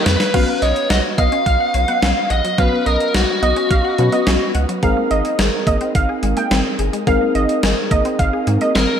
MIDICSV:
0, 0, Header, 1, 7, 480
1, 0, Start_track
1, 0, Tempo, 560748
1, 293, Time_signature, 4, 2, 24, 8
1, 7701, End_track
2, 0, Start_track
2, 0, Title_t, "Synth pluck"
2, 0, Program_c, 0, 84
2, 291, Note_on_c, 0, 77, 99
2, 448, Note_off_c, 0, 77, 0
2, 531, Note_on_c, 0, 75, 79
2, 870, Note_off_c, 0, 75, 0
2, 1013, Note_on_c, 0, 75, 76
2, 1091, Note_off_c, 0, 75, 0
2, 1251, Note_on_c, 0, 77, 85
2, 1329, Note_off_c, 0, 77, 0
2, 1611, Note_on_c, 0, 78, 78
2, 1768, Note_off_c, 0, 78, 0
2, 2212, Note_on_c, 0, 77, 100
2, 2368, Note_off_c, 0, 77, 0
2, 2453, Note_on_c, 0, 75, 81
2, 2791, Note_off_c, 0, 75, 0
2, 2933, Note_on_c, 0, 75, 88
2, 3011, Note_off_c, 0, 75, 0
2, 3172, Note_on_c, 0, 77, 84
2, 3250, Note_off_c, 0, 77, 0
2, 3532, Note_on_c, 0, 75, 79
2, 3688, Note_off_c, 0, 75, 0
2, 4134, Note_on_c, 0, 77, 95
2, 4289, Note_off_c, 0, 77, 0
2, 4373, Note_on_c, 0, 75, 82
2, 4711, Note_off_c, 0, 75, 0
2, 4855, Note_on_c, 0, 75, 78
2, 4932, Note_off_c, 0, 75, 0
2, 5094, Note_on_c, 0, 77, 86
2, 5172, Note_off_c, 0, 77, 0
2, 5454, Note_on_c, 0, 79, 79
2, 5609, Note_off_c, 0, 79, 0
2, 6053, Note_on_c, 0, 77, 104
2, 6209, Note_off_c, 0, 77, 0
2, 6293, Note_on_c, 0, 75, 82
2, 6631, Note_off_c, 0, 75, 0
2, 6773, Note_on_c, 0, 75, 85
2, 6851, Note_off_c, 0, 75, 0
2, 7012, Note_on_c, 0, 77, 86
2, 7090, Note_off_c, 0, 77, 0
2, 7374, Note_on_c, 0, 75, 78
2, 7529, Note_off_c, 0, 75, 0
2, 7701, End_track
3, 0, Start_track
3, 0, Title_t, "Lead electric guitar"
3, 0, Program_c, 1, 29
3, 54, Note_on_c, 1, 71, 103
3, 533, Note_on_c, 1, 73, 97
3, 547, Note_off_c, 1, 71, 0
3, 770, Note_off_c, 1, 73, 0
3, 774, Note_on_c, 1, 75, 99
3, 838, Note_off_c, 1, 75, 0
3, 1014, Note_on_c, 1, 77, 107
3, 1974, Note_on_c, 1, 75, 97
3, 2002, Note_off_c, 1, 77, 0
3, 2214, Note_on_c, 1, 71, 100
3, 2220, Note_off_c, 1, 75, 0
3, 2436, Note_off_c, 1, 71, 0
3, 2452, Note_on_c, 1, 70, 90
3, 2675, Note_off_c, 1, 70, 0
3, 2693, Note_on_c, 1, 66, 76
3, 3858, Note_off_c, 1, 66, 0
3, 7495, Note_on_c, 1, 70, 96
3, 7701, Note_off_c, 1, 70, 0
3, 7701, End_track
4, 0, Start_track
4, 0, Title_t, "FM electric piano"
4, 0, Program_c, 2, 5
4, 0, Note_on_c, 2, 58, 69
4, 0, Note_on_c, 2, 63, 66
4, 0, Note_on_c, 2, 67, 67
4, 0, Note_on_c, 2, 70, 67
4, 0, Note_on_c, 2, 75, 78
4, 259, Note_off_c, 2, 58, 0
4, 259, Note_off_c, 2, 63, 0
4, 259, Note_off_c, 2, 67, 0
4, 259, Note_off_c, 2, 70, 0
4, 259, Note_off_c, 2, 75, 0
4, 292, Note_on_c, 2, 59, 67
4, 292, Note_on_c, 2, 61, 63
4, 292, Note_on_c, 2, 66, 61
4, 293, Note_on_c, 2, 71, 76
4, 2178, Note_off_c, 2, 59, 0
4, 2178, Note_off_c, 2, 61, 0
4, 2178, Note_off_c, 2, 66, 0
4, 2178, Note_off_c, 2, 71, 0
4, 2213, Note_on_c, 2, 59, 71
4, 2213, Note_on_c, 2, 61, 62
4, 2213, Note_on_c, 2, 66, 63
4, 2213, Note_on_c, 2, 71, 75
4, 3389, Note_off_c, 2, 59, 0
4, 3389, Note_off_c, 2, 61, 0
4, 3389, Note_off_c, 2, 66, 0
4, 3389, Note_off_c, 2, 71, 0
4, 3413, Note_on_c, 2, 59, 60
4, 3413, Note_on_c, 2, 61, 53
4, 3413, Note_on_c, 2, 66, 55
4, 3413, Note_on_c, 2, 71, 66
4, 4133, Note_off_c, 2, 59, 0
4, 4133, Note_off_c, 2, 61, 0
4, 4133, Note_off_c, 2, 66, 0
4, 4133, Note_off_c, 2, 71, 0
4, 4133, Note_on_c, 2, 60, 84
4, 4133, Note_on_c, 2, 63, 78
4, 4133, Note_on_c, 2, 70, 93
4, 4134, Note_on_c, 2, 68, 75
4, 6019, Note_off_c, 2, 60, 0
4, 6019, Note_off_c, 2, 63, 0
4, 6019, Note_off_c, 2, 68, 0
4, 6019, Note_off_c, 2, 70, 0
4, 6052, Note_on_c, 2, 70, 92
4, 6053, Note_on_c, 2, 60, 79
4, 6053, Note_on_c, 2, 63, 75
4, 6053, Note_on_c, 2, 68, 75
4, 7701, Note_off_c, 2, 60, 0
4, 7701, Note_off_c, 2, 63, 0
4, 7701, Note_off_c, 2, 68, 0
4, 7701, Note_off_c, 2, 70, 0
4, 7701, End_track
5, 0, Start_track
5, 0, Title_t, "Synth arpeggio sound"
5, 0, Program_c, 3, 84
5, 293, Note_on_c, 3, 54, 96
5, 365, Note_off_c, 3, 54, 0
5, 412, Note_on_c, 3, 59, 77
5, 485, Note_off_c, 3, 59, 0
5, 772, Note_on_c, 3, 78, 93
5, 845, Note_off_c, 3, 78, 0
5, 1012, Note_on_c, 3, 59, 76
5, 1085, Note_off_c, 3, 59, 0
5, 1132, Note_on_c, 3, 61, 78
5, 1205, Note_off_c, 3, 61, 0
5, 1373, Note_on_c, 3, 78, 79
5, 1445, Note_off_c, 3, 78, 0
5, 1493, Note_on_c, 3, 54, 80
5, 1565, Note_off_c, 3, 54, 0
5, 1612, Note_on_c, 3, 59, 74
5, 1685, Note_off_c, 3, 59, 0
5, 1733, Note_on_c, 3, 61, 90
5, 1805, Note_off_c, 3, 61, 0
5, 1972, Note_on_c, 3, 78, 83
5, 2045, Note_off_c, 3, 78, 0
5, 2093, Note_on_c, 3, 54, 69
5, 2166, Note_off_c, 3, 54, 0
5, 2213, Note_on_c, 3, 54, 100
5, 2285, Note_off_c, 3, 54, 0
5, 2333, Note_on_c, 3, 59, 75
5, 2405, Note_off_c, 3, 59, 0
5, 2692, Note_on_c, 3, 78, 95
5, 2765, Note_off_c, 3, 78, 0
5, 2933, Note_on_c, 3, 59, 79
5, 3005, Note_off_c, 3, 59, 0
5, 3052, Note_on_c, 3, 61, 77
5, 3125, Note_off_c, 3, 61, 0
5, 3293, Note_on_c, 3, 78, 78
5, 3365, Note_off_c, 3, 78, 0
5, 3413, Note_on_c, 3, 54, 78
5, 3485, Note_off_c, 3, 54, 0
5, 3533, Note_on_c, 3, 59, 75
5, 3605, Note_off_c, 3, 59, 0
5, 3653, Note_on_c, 3, 61, 86
5, 3725, Note_off_c, 3, 61, 0
5, 3893, Note_on_c, 3, 78, 86
5, 3965, Note_off_c, 3, 78, 0
5, 4013, Note_on_c, 3, 54, 71
5, 4086, Note_off_c, 3, 54, 0
5, 4133, Note_on_c, 3, 56, 101
5, 4205, Note_off_c, 3, 56, 0
5, 4253, Note_on_c, 3, 58, 76
5, 4325, Note_off_c, 3, 58, 0
5, 4613, Note_on_c, 3, 68, 94
5, 4685, Note_off_c, 3, 68, 0
5, 4853, Note_on_c, 3, 58, 78
5, 4925, Note_off_c, 3, 58, 0
5, 4973, Note_on_c, 3, 60, 79
5, 5046, Note_off_c, 3, 60, 0
5, 5214, Note_on_c, 3, 68, 82
5, 5286, Note_off_c, 3, 68, 0
5, 5333, Note_on_c, 3, 56, 77
5, 5406, Note_off_c, 3, 56, 0
5, 5453, Note_on_c, 3, 58, 77
5, 5526, Note_off_c, 3, 58, 0
5, 5573, Note_on_c, 3, 60, 89
5, 5645, Note_off_c, 3, 60, 0
5, 5814, Note_on_c, 3, 68, 86
5, 5886, Note_off_c, 3, 68, 0
5, 5933, Note_on_c, 3, 56, 70
5, 6005, Note_off_c, 3, 56, 0
5, 6053, Note_on_c, 3, 56, 100
5, 6126, Note_off_c, 3, 56, 0
5, 6173, Note_on_c, 3, 58, 77
5, 6245, Note_off_c, 3, 58, 0
5, 6533, Note_on_c, 3, 68, 95
5, 6605, Note_off_c, 3, 68, 0
5, 6773, Note_on_c, 3, 58, 79
5, 6846, Note_off_c, 3, 58, 0
5, 6893, Note_on_c, 3, 60, 80
5, 6965, Note_off_c, 3, 60, 0
5, 7133, Note_on_c, 3, 68, 81
5, 7205, Note_off_c, 3, 68, 0
5, 7254, Note_on_c, 3, 56, 80
5, 7326, Note_off_c, 3, 56, 0
5, 7374, Note_on_c, 3, 58, 76
5, 7446, Note_off_c, 3, 58, 0
5, 7493, Note_on_c, 3, 60, 89
5, 7566, Note_off_c, 3, 60, 0
5, 7701, End_track
6, 0, Start_track
6, 0, Title_t, "Analog synth bass"
6, 0, Program_c, 4, 38
6, 52, Note_on_c, 4, 41, 94
6, 143, Note_off_c, 4, 41, 0
6, 292, Note_on_c, 4, 35, 102
6, 384, Note_off_c, 4, 35, 0
6, 532, Note_on_c, 4, 35, 99
6, 624, Note_off_c, 4, 35, 0
6, 772, Note_on_c, 4, 35, 97
6, 864, Note_off_c, 4, 35, 0
6, 1011, Note_on_c, 4, 35, 96
6, 1103, Note_off_c, 4, 35, 0
6, 1252, Note_on_c, 4, 35, 109
6, 1344, Note_off_c, 4, 35, 0
6, 1493, Note_on_c, 4, 35, 96
6, 1584, Note_off_c, 4, 35, 0
6, 1732, Note_on_c, 4, 35, 98
6, 1824, Note_off_c, 4, 35, 0
6, 1972, Note_on_c, 4, 34, 91
6, 2064, Note_off_c, 4, 34, 0
6, 2212, Note_on_c, 4, 35, 116
6, 2303, Note_off_c, 4, 35, 0
6, 2451, Note_on_c, 4, 35, 104
6, 2543, Note_off_c, 4, 35, 0
6, 2693, Note_on_c, 4, 35, 93
6, 2784, Note_off_c, 4, 35, 0
6, 2932, Note_on_c, 4, 35, 100
6, 3024, Note_off_c, 4, 35, 0
6, 3173, Note_on_c, 4, 35, 119
6, 3264, Note_off_c, 4, 35, 0
6, 3413, Note_on_c, 4, 47, 104
6, 3504, Note_off_c, 4, 47, 0
6, 3653, Note_on_c, 4, 35, 88
6, 3744, Note_off_c, 4, 35, 0
6, 3893, Note_on_c, 4, 37, 98
6, 3984, Note_off_c, 4, 37, 0
6, 4133, Note_on_c, 4, 32, 106
6, 4224, Note_off_c, 4, 32, 0
6, 4374, Note_on_c, 4, 32, 95
6, 4464, Note_off_c, 4, 32, 0
6, 4613, Note_on_c, 4, 32, 96
6, 4704, Note_off_c, 4, 32, 0
6, 4852, Note_on_c, 4, 32, 104
6, 4943, Note_off_c, 4, 32, 0
6, 5093, Note_on_c, 4, 32, 106
6, 5184, Note_off_c, 4, 32, 0
6, 5332, Note_on_c, 4, 32, 103
6, 5424, Note_off_c, 4, 32, 0
6, 5573, Note_on_c, 4, 32, 102
6, 5664, Note_off_c, 4, 32, 0
6, 5812, Note_on_c, 4, 31, 97
6, 5904, Note_off_c, 4, 31, 0
6, 6053, Note_on_c, 4, 32, 105
6, 6144, Note_off_c, 4, 32, 0
6, 6293, Note_on_c, 4, 32, 109
6, 6384, Note_off_c, 4, 32, 0
6, 6533, Note_on_c, 4, 32, 97
6, 6624, Note_off_c, 4, 32, 0
6, 6772, Note_on_c, 4, 32, 101
6, 6863, Note_off_c, 4, 32, 0
6, 7013, Note_on_c, 4, 32, 108
6, 7104, Note_off_c, 4, 32, 0
6, 7253, Note_on_c, 4, 44, 97
6, 7344, Note_off_c, 4, 44, 0
6, 7493, Note_on_c, 4, 32, 94
6, 7584, Note_off_c, 4, 32, 0
6, 7701, End_track
7, 0, Start_track
7, 0, Title_t, "Drums"
7, 51, Note_on_c, 9, 42, 85
7, 52, Note_on_c, 9, 38, 113
7, 137, Note_off_c, 9, 42, 0
7, 138, Note_off_c, 9, 38, 0
7, 172, Note_on_c, 9, 38, 99
7, 174, Note_on_c, 9, 42, 60
7, 257, Note_off_c, 9, 38, 0
7, 260, Note_off_c, 9, 42, 0
7, 291, Note_on_c, 9, 42, 68
7, 291, Note_on_c, 9, 49, 101
7, 292, Note_on_c, 9, 36, 124
7, 377, Note_off_c, 9, 42, 0
7, 377, Note_off_c, 9, 49, 0
7, 378, Note_off_c, 9, 36, 0
7, 531, Note_on_c, 9, 42, 70
7, 617, Note_off_c, 9, 42, 0
7, 652, Note_on_c, 9, 42, 54
7, 737, Note_off_c, 9, 42, 0
7, 771, Note_on_c, 9, 42, 72
7, 772, Note_on_c, 9, 38, 111
7, 857, Note_off_c, 9, 42, 0
7, 858, Note_off_c, 9, 38, 0
7, 1011, Note_on_c, 9, 36, 98
7, 1013, Note_on_c, 9, 42, 71
7, 1097, Note_off_c, 9, 36, 0
7, 1099, Note_off_c, 9, 42, 0
7, 1131, Note_on_c, 9, 42, 52
7, 1216, Note_off_c, 9, 42, 0
7, 1252, Note_on_c, 9, 36, 96
7, 1252, Note_on_c, 9, 42, 63
7, 1338, Note_off_c, 9, 36, 0
7, 1338, Note_off_c, 9, 42, 0
7, 1491, Note_on_c, 9, 42, 73
7, 1576, Note_off_c, 9, 42, 0
7, 1610, Note_on_c, 9, 42, 58
7, 1696, Note_off_c, 9, 42, 0
7, 1733, Note_on_c, 9, 42, 73
7, 1734, Note_on_c, 9, 38, 121
7, 1818, Note_off_c, 9, 42, 0
7, 1819, Note_off_c, 9, 38, 0
7, 1971, Note_on_c, 9, 42, 79
7, 2056, Note_off_c, 9, 42, 0
7, 2094, Note_on_c, 9, 42, 58
7, 2179, Note_off_c, 9, 42, 0
7, 2211, Note_on_c, 9, 42, 70
7, 2212, Note_on_c, 9, 36, 124
7, 2296, Note_off_c, 9, 42, 0
7, 2297, Note_off_c, 9, 36, 0
7, 2451, Note_on_c, 9, 42, 68
7, 2537, Note_off_c, 9, 42, 0
7, 2572, Note_on_c, 9, 42, 53
7, 2657, Note_off_c, 9, 42, 0
7, 2691, Note_on_c, 9, 42, 73
7, 2692, Note_on_c, 9, 38, 110
7, 2777, Note_off_c, 9, 42, 0
7, 2778, Note_off_c, 9, 38, 0
7, 2933, Note_on_c, 9, 42, 68
7, 3019, Note_off_c, 9, 42, 0
7, 3051, Note_on_c, 9, 42, 51
7, 3137, Note_off_c, 9, 42, 0
7, 3172, Note_on_c, 9, 42, 68
7, 3173, Note_on_c, 9, 36, 97
7, 3258, Note_off_c, 9, 36, 0
7, 3258, Note_off_c, 9, 42, 0
7, 3411, Note_on_c, 9, 42, 70
7, 3496, Note_off_c, 9, 42, 0
7, 3530, Note_on_c, 9, 42, 56
7, 3615, Note_off_c, 9, 42, 0
7, 3652, Note_on_c, 9, 42, 73
7, 3653, Note_on_c, 9, 38, 118
7, 3738, Note_off_c, 9, 42, 0
7, 3739, Note_off_c, 9, 38, 0
7, 3892, Note_on_c, 9, 42, 79
7, 3977, Note_off_c, 9, 42, 0
7, 4015, Note_on_c, 9, 42, 58
7, 4100, Note_off_c, 9, 42, 0
7, 4132, Note_on_c, 9, 42, 68
7, 4133, Note_on_c, 9, 36, 124
7, 4217, Note_off_c, 9, 42, 0
7, 4218, Note_off_c, 9, 36, 0
7, 4372, Note_on_c, 9, 42, 69
7, 4458, Note_off_c, 9, 42, 0
7, 4493, Note_on_c, 9, 42, 53
7, 4578, Note_off_c, 9, 42, 0
7, 4612, Note_on_c, 9, 42, 73
7, 4613, Note_on_c, 9, 38, 110
7, 4698, Note_off_c, 9, 38, 0
7, 4698, Note_off_c, 9, 42, 0
7, 4852, Note_on_c, 9, 36, 98
7, 4854, Note_on_c, 9, 42, 72
7, 4937, Note_off_c, 9, 36, 0
7, 4939, Note_off_c, 9, 42, 0
7, 4972, Note_on_c, 9, 42, 54
7, 5057, Note_off_c, 9, 42, 0
7, 5093, Note_on_c, 9, 36, 96
7, 5093, Note_on_c, 9, 42, 65
7, 5179, Note_off_c, 9, 36, 0
7, 5179, Note_off_c, 9, 42, 0
7, 5331, Note_on_c, 9, 42, 73
7, 5417, Note_off_c, 9, 42, 0
7, 5450, Note_on_c, 9, 42, 55
7, 5536, Note_off_c, 9, 42, 0
7, 5573, Note_on_c, 9, 42, 73
7, 5574, Note_on_c, 9, 38, 123
7, 5659, Note_off_c, 9, 42, 0
7, 5660, Note_off_c, 9, 38, 0
7, 5812, Note_on_c, 9, 42, 80
7, 5898, Note_off_c, 9, 42, 0
7, 5935, Note_on_c, 9, 42, 58
7, 6021, Note_off_c, 9, 42, 0
7, 6052, Note_on_c, 9, 42, 68
7, 6053, Note_on_c, 9, 36, 124
7, 6138, Note_off_c, 9, 42, 0
7, 6139, Note_off_c, 9, 36, 0
7, 6292, Note_on_c, 9, 42, 71
7, 6378, Note_off_c, 9, 42, 0
7, 6413, Note_on_c, 9, 42, 55
7, 6498, Note_off_c, 9, 42, 0
7, 6532, Note_on_c, 9, 42, 74
7, 6533, Note_on_c, 9, 38, 109
7, 6618, Note_off_c, 9, 42, 0
7, 6619, Note_off_c, 9, 38, 0
7, 6772, Note_on_c, 9, 36, 98
7, 6774, Note_on_c, 9, 42, 68
7, 6857, Note_off_c, 9, 36, 0
7, 6859, Note_off_c, 9, 42, 0
7, 6891, Note_on_c, 9, 42, 53
7, 6977, Note_off_c, 9, 42, 0
7, 7013, Note_on_c, 9, 36, 94
7, 7013, Note_on_c, 9, 42, 66
7, 7098, Note_off_c, 9, 36, 0
7, 7098, Note_off_c, 9, 42, 0
7, 7251, Note_on_c, 9, 42, 72
7, 7337, Note_off_c, 9, 42, 0
7, 7370, Note_on_c, 9, 42, 56
7, 7456, Note_off_c, 9, 42, 0
7, 7493, Note_on_c, 9, 42, 71
7, 7494, Note_on_c, 9, 38, 120
7, 7578, Note_off_c, 9, 42, 0
7, 7579, Note_off_c, 9, 38, 0
7, 7701, End_track
0, 0, End_of_file